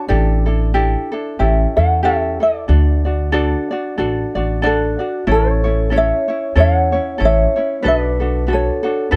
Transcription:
Already playing: ukulele A5
0.08 upright bass A1, ukulele D4 E4 G4 A4 D5
0.46 ukulele D4 E4 A4
0.74 ukulele D4 E4 G4 A4
1.12 ukulele D4 E4 A4
1.39 upright bass A1, ukulele C#4 E4 G4 A4 E5
1.76 upright bass E2, ukulele C#4 E4 A4 F#5
2.03 ukulele C#4 E4 G4 A4 E5
2.40 ukulele E4 A4 D5
2.68 upright bass D2, ukulele D4 F#4 A4 D5
3.05 ukulele D4 F#4 D5
3.32 ukulele D4 F#4 A4 D5
3.71 ukulele D4 F#4 D5
3.98 upright bass A1, ukulele D4 F#4 A4 D5
4.35 upright bass A1, ukulele D4 F#4 D5
4.62 ukulele D4 F#4 A4 D5, vibraphone F#4
4.66 ukulele A4
4.99 ukulele D4 F#4 D5
5.27 upright bass A1, ukulele C#4 E4 A4 C#5, vibraphone A4
5.31 ukulele A4 C#5
5.64 ukulele C#4 E4 C#5
5.90 ukulele C#4 E4 A4 C#5, vibraphone C#5
5.96 ukulele C#5 E5
6.28 ukulele C#4 E4 C#5
6.55 upright bass E2, ukulele C#4 E4 A4 C#5, vibraphone C#5
6.60 ukulele F#5
6.92 ukulele C#4 E4 C#5
7.18 upright bass A1, ukulele C#4 E4 A4 C#5, vibraphone C#5
7.25 ukulele C#5 E5
7.56 ukulele C#4 E4 C#5
7.82 upright bass B1, ukulele D4 F#4 A4 B4, vibraphone B4
7.88 ukulele D5
8.20 ukulele D4 F#4 A4
8.47 ukulele D4 F#4 A4 B4, vibraphone A4
8.53 ukulele A4 C#5
8.83 ukulele D4 F#4 A4
9.11 upright bass F#2, ukulele D4 F#4 A4 B4

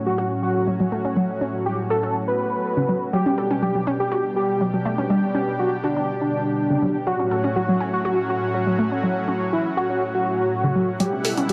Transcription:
Already playing: analog synth pad A2 F#3 C#4 F#4
0.06 analog synth lead F#4
0.18 synth arpeggio sound F#4
0.43 analog synth lead F#4
0.67 synth arpeggio sound F#3
0.80 synth arpeggio sound F#3
0.92 synth arpeggio sound A3
1.05 synth arpeggio sound C#4
1.16 synth arpeggio sound F#3
1.41 synth arpeggio sound C#4
1.66 analog synth lead G4
1.90 synth arpeggio sound F#4, analog synth lead A4
2.03 synth arpeggio sound C#4
2.28 analog synth lead B4
2.77 synth arpeggio sound C#3
2.89 synth arpeggio sound F#3
3.13 analog synth pad B2 G3 D4 G4, synth arpeggio sound F#3, analog synth lead G4
3.26 synth arpeggio sound C#4
3.38 synth arpeggio sound A4
3.51 synth arpeggio sound C#4
3.62 synth arpeggio sound F#3, analog synth lead G4
3.75 synth arpeggio sound F#3
3.87 synth arpeggio sound C#4
4.00 analog synth lead G4
4.12 synth arpeggio sound F#4
4.36 analog synth lead G4
4.61 synth arpeggio sound F#3
4.74 synth arpeggio sound F#3
4.85 synth arpeggio sound A3
4.98 synth arpeggio sound C#4
5.10 synth arpeggio sound G3
5.35 synth arpeggio sound C#4
5.59 analog synth lead F#4
5.84 analog synth lead D4, synth arpeggio sound F#4
5.97 synth arpeggio sound D4
6.21 analog synth lead D4
6.70 synth arpeggio sound C#3
6.82 synth arpeggio sound F#3
7.07 analog synth pad A2 F#3 C#4 F#4, synth arpeggio sound F#3, analog synth lead F#4
7.19 synth arpeggio sound C#4
7.31 synth arpeggio sound A4
7.44 synth arpeggio sound C#4
7.56 synth arpeggio sound F#3, analog synth lead F#4
7.69 synth arpeggio sound F#3
7.80 synth arpeggio sound C#4
7.93 analog synth lead F#4
8.05 synth arpeggio sound F#4
8.30 analog synth lead F#4
8.54 synth arpeggio sound F#3
8.67 synth arpeggio sound F#3
8.79 synth arpeggio sound A3
8.92 synth arpeggio sound C#4
9.03 synth arpeggio sound F#3
9.28 synth arpeggio sound C#4
9.53 analog synth lead E4
9.77 synth arpeggio sound F#4, analog synth lead F#4
9.90 synth arpeggio sound C#4
10.14 analog synth lead F#4
10.64 synth arpeggio sound C#3
10.75 synth arpeggio sound F#3
11.00 analog synth pad B2 G3 E4 F#5, synth arpeggio sound F#3, analog synth lead G4, closed hi-hat, riser
11.13 synth arpeggio sound C#4
11.25 synth arpeggio sound A4, open hi-hat
11.37 synth arpeggio sound C#4, closed hi-hat
11.49 synth arpeggio sound F#3, analog synth lead G4, closed hi-hat

